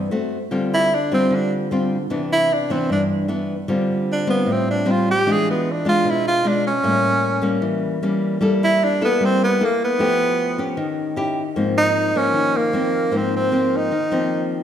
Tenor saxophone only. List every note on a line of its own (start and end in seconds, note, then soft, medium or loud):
0.74 0.96 E4 loud
0.95 1.13 D4 medium
1.14 1.37 C4 medium
1.35 1.53 D4 medium
2.32 2.55 E4 medium
2.53 2.74 D4 medium
2.72 2.90 C4 medium
2.92 3.03 D4 medium
4.12 4.28 D4 medium
4.30 4.53 B3 medium
4.52 4.69 C4 medium
4.71 4.93 D4 medium
4.91 5.08 F4 medium
5.11 5.33 G4 loud
5.32 5.48 G#4 medium
5.50 5.73 B3 medium
5.72 5.88 D4 medium
5.89 6.11 F4 loud
6.10 6.27 E4 medium
6.28 6.49 F4 loud
6.48 6.65 D4 medium
6.67 7.60 C#4 loud
8.64 8.85 E4 loud
8.84 9.02 D4 medium
9.05 9.26 B3 medium
9.25 9.42 C4 medium
9.44 9.66 B3 medium
9.65 9.82 A#3 medium
9.84 10.76 B3 loud
11.78 12.19 D#4 medium
12.17 12.58 C#4 loud
12.57 13.18 A#3 medium
13.17 13.35 C4 medium
13.36 13.78 C4 medium
13.77 14.53 D#4 medium